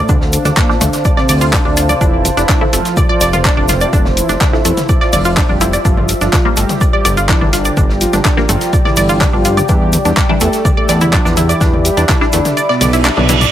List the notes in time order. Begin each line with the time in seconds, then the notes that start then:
Already playing: A2 A3 C5 F5 A5
0.09 D2 D4 D5, kick, closed hi-hat, mid tom, shaker
0.21 snare
0.33 D3 D4, open hi-hat, shaker
0.45 D2 D4 D5, snare, closed hi-hat, mid tom, shaker
0.56 A#2 A#3 D4 D5, kick, snare, clap, closed hi-hat, shaker
0.69 F3 C4 D4, snare
0.81 D2 D3 A3 D4 A4, open hi-hat, mid tom, shaker
0.93 snare, closed hi-hat, shaker
1.05 D5 D6, kick, closed hi-hat, shaker
1.17 C3 C4 D5 D6, snare, mid tom
1.29 D2 D5 D6, open hi-hat, shaker
1.41 F4 F5, closed hi-hat, shaker
1.53 D4 D5, kick, snare, clap, closed hi-hat, mid tom, shaker
1.65 D2 D3 D4 D5
1.77 F4 F5, open hi-hat, shaker
1.89 D5 D6, closed hi-hat, mid tom, shaker
2.01 F1 E3 D4 E4 F4 D5, kick, closed hi-hat, shaker
2.25 open hi-hat, mid tom, shaker
2.37 F1 E3 D4 E4 D5, snare, closed hi-hat, shaker
2.44 E5
2.49 D4 D5, kick, snare, clap, closed hi-hat, shaker
2.61 F3 A3 E4, mid tom
2.73 F1 F3 A3 F4 A4, open hi-hat, shaker
2.85 snare, closed hi-hat, shaker
2.97 D5 D6, kick, closed hi-hat, mid tom, shaker
3.09 F3 F4 D5 D6
3.21 F1 D5 D6, snare, open hi-hat, shaker
3.33 F4 F5, closed hi-hat, mid tom, shaker
3.44 D3 D4 D5, kick, snare, clap, closed hi-hat, shaker
3.57 F1 D4 D5
3.69 C3 C4 F4 F5, snare, open hi-hat, mid tom, shaker
3.81 D5 D6, closed hi-hat, shaker
3.93 F1 D4 D5, kick, closed hi-hat, shaker
4.05 snare, mid tom
4.17 E3 E4, open hi-hat, shaker
4.29 F1 D4 D5, snare, closed hi-hat, shaker
4.41 C3 C4 D4 D5, kick, snare, clap, closed hi-hat, mid tom, shaker
4.53 F3 A3 E4, snare
4.65 F1 E3 A3 E4 A4, open hi-hat, shaker
4.77 snare, closed hi-hat, mid tom, shaker
4.89 D5 D6, kick, closed hi-hat, shaker
5.01 F3 F4 D5 D6, snare
5.13 F1 D5 D6, open hi-hat, mid tom, shaker
5.25 F4 F5, closed hi-hat, shaker
5.37 D4 D5, kick, snare, clap, closed hi-hat, shaker
5.49 F1 G3 D4 G4 D5, mid tom
5.61 F3 A3 E4 F4 F5, open hi-hat, shaker
5.73 D5 D6, closed hi-hat, shaker
5.85 G1 F3 D4 F4 G4 D5, kick, closed hi-hat, shaker
5.97 mid tom
6.07 D5, open hi-hat, shaker
6.21 G1 F3 D4 F4 D5, snare, closed hi-hat, shaker
6.33 D4 D5, kick, snare, clap, closed hi-hat, mid tom, shaker
6.42 F3 G3 A#3 G5
6.57 G1 G3 A3 G4 A4, open hi-hat, shaker
6.69 snare, closed hi-hat, mid tom, shaker
6.81 D5 D6, kick, closed hi-hat, shaker
6.93 G3 G4 D5 D6
7.03 G1 D5 A#5 D6, snare, open hi-hat, mid tom, shaker
7.17 F4 F5, closed hi-hat, shaker
7.29 E3 D4 E4 D5, kick, snare, clap, closed hi-hat, shaker
7.41 G1 D4 D5, mid tom
7.53 D3 D4 F4 F5, snare, open hi-hat, shaker
7.65 D5 D6, closed hi-hat, shaker
7.77 G1 D4 D5, kick, closed hi-hat, mid tom, shaker
7.89 snare
8.00 F3 F4, open hi-hat, shaker
8.13 G1 D4 D5, snare, closed hi-hat, mid tom, shaker
8.25 D3 D4 D5, kick, snare, clap, closed hi-hat, shaker
8.37 F3 G3 A#3, snare
8.49 G1 F3 A3 F4 A4, open hi-hat, mid tom, shaker
8.61 snare, closed hi-hat, shaker
8.73 D5 D6, kick, closed hi-hat, shaker
8.85 E3 E4 D5 D6, snare, mid tom
8.96 G1 D5 D6, open hi-hat, shaker
9.09 F4 F5, closed hi-hat, shaker
9.21 D4 D5, kick, snare, clap, closed hi-hat, mid tom, shaker
9.33 G1 F3 D4 F4 D5
9.45 F4 F5, open hi-hat, shaker
9.57 D5 D6, closed hi-hat, mid tom, shaker
9.68 E2 G3 D4 G4 D5, kick, closed hi-hat, shaker
9.92 open hi-hat, mid tom, shaker
10.05 E2 G3 D4 G4 D5, snare, closed hi-hat, shaker
10.17 D4 D5, kick, snare, clap, closed hi-hat, shaker
10.29 E3 G3 D4, mid tom
10.40 E2 A3 A4 E5, open hi-hat, shaker
10.49 B5
10.53 snare, closed hi-hat, shaker
10.65 D5 D6, kick, closed hi-hat, mid tom, shaker
10.77 A3 A4 D5 D6
10.89 E2 D5 D6, snare, open hi-hat, shaker
11.01 E4 E5, closed hi-hat, mid tom, shaker
11.12 F3 D4 F4 D5, kick, clap, closed hi-hat, shaker
11.25 E2 D4 D5, snare, shaker
11.37 E3 E4 E5, open hi-hat, mid tom, shaker
11.49 D5 D6, closed hi-hat, shaker
11.60 E2 D4 D5, kick, snare, closed hi-hat, shaker
11.73 mid tom
11.85 G3 G4, open hi-hat, shaker
11.97 E2 D4 D5, snare, closed hi-hat, shaker
12.09 E3 D4 E4 D5, kick, snare, clap, closed hi-hat, mid tom, shaker
12.21 E3 G3 D4, snare
12.32 E2 D3 A3 D4 A4, open hi-hat, shaker
12.45 snare, closed hi-hat, mid tom, shaker
12.57 D5 D6, closed hi-hat, reverse cymbal, shaker
12.69 B2 B3 D5 D6, snare
12.81 B1 D5 D6, open hi-hat, mid tom, shaker
12.93 E4 E5, closed hi-hat, shaker
13.04 D4 D5, snare, clap, closed hi-hat, high tom, shaker
13.17 B1 B2 B3 D4 D5, clap, mid tom, high tom
13.29 E3 G3 D4 E4 E5, snare, open hi-hat, mid tom, shaker
13.41 D5 D6, closed hi-hat, mid tom, shaker